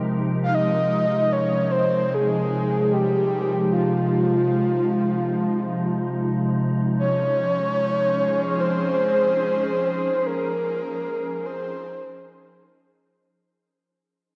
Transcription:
Already playing: C3 F3 G#3 D#4 G4 A#4
0.43 F5
0.54 D#5
1.32 C#5
1.71 C5
2.14 G#4
2.93 G4
3.73 F4
6.99 F3 C#5
7.59 C#4
7.78 G#4
8.60 C5
10.26 A#4
11.46 C5

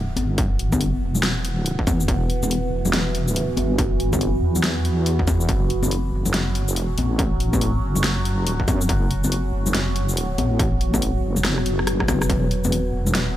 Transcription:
Already playing: E1 E3 B3 F#4
0.16 G1, closed hi-hat, high conga
0.38 kick, closed hi-hat
0.59 closed hi-hat
0.73 kick, high conga, shaker
0.81 closed hi-hat
1.02 E1
1.15 low conga, shaker
1.23 snare, closed hi-hat, high conga
1.45 closed hi-hat
1.66 closed hi-hat
1.79 kick
1.87 E2, kick, closed hi-hat, high conga, shaker
2.00 shaker
2.08 E1, kick, closed hi-hat
2.30 closed hi-hat
2.43 high conga, shaker
2.51 closed hi-hat
2.72 E1
2.85 low conga, shaker
2.93 snare, closed hi-hat, high conga
3.15 closed hi-hat
3.28 shaker
3.36 closed hi-hat
3.57 G1, closed hi-hat, high conga
3.78 kick, closed hi-hat
4.00 closed hi-hat
4.13 kick, high conga, shaker
4.21 closed hi-hat
4.42 E2
4.55 low conga, shaker
4.64 snare, closed hi-hat, high conga
4.85 closed hi-hat
5.06 closed hi-hat
5.19 kick
5.27 kick, closed hi-hat, high conga, shaker
5.41 shaker
5.49 F#1 F#3 C#4, kick, closed hi-hat
5.70 closed hi-hat
5.83 high conga, shaker
5.91 closed hi-hat
6.13 F#1
6.26 low conga, shaker
6.34 snare, closed hi-hat, high conga
6.55 closed hi-hat
6.68 F1, shaker
6.76 closed hi-hat
6.97 A1, closed hi-hat, high conga
7.19 kick, closed hi-hat
7.40 closed hi-hat
7.53 kick, high conga, shaker
7.61 closed hi-hat
7.83 F#1
7.95 low conga, shaker
8.04 snare, closed hi-hat, high conga
8.25 closed hi-hat
8.47 closed hi-hat
8.60 kick
8.68 F#2, kick, closed hi-hat, high conga, shaker
8.81 shaker
8.89 F#1 B3, kick, closed hi-hat
9.11 closed hi-hat
9.24 high conga, shaker
9.32 closed hi-hat
9.53 F#1
9.66 low conga, shaker
9.74 snare, closed hi-hat, high conga
9.96 closed hi-hat
10.09 shaker
10.17 closed hi-hat
10.38 A1, closed hi-hat, high conga
10.59 kick, closed hi-hat
10.81 closed hi-hat
10.94 kick, high conga, shaker
11.02 closed hi-hat
11.23 F#1
11.36 low conga, shaker
11.44 cross-stick, snare, closed hi-hat, high conga
11.58 cross-stick
11.66 F#1, closed hi-hat
11.79 cross-stick
11.87 cross-stick, closed hi-hat
12.00 kick, cross-stick
12.08 kick, cross-stick, closed hi-hat, high conga, shaker
12.22 cross-stick, shaker
12.30 E1 E3 F#4, kick, closed hi-hat
12.51 closed hi-hat
12.64 high conga, shaker
12.72 closed hi-hat
12.93 E1
13.07 low conga, shaker
13.14 snare, closed hi-hat, high conga

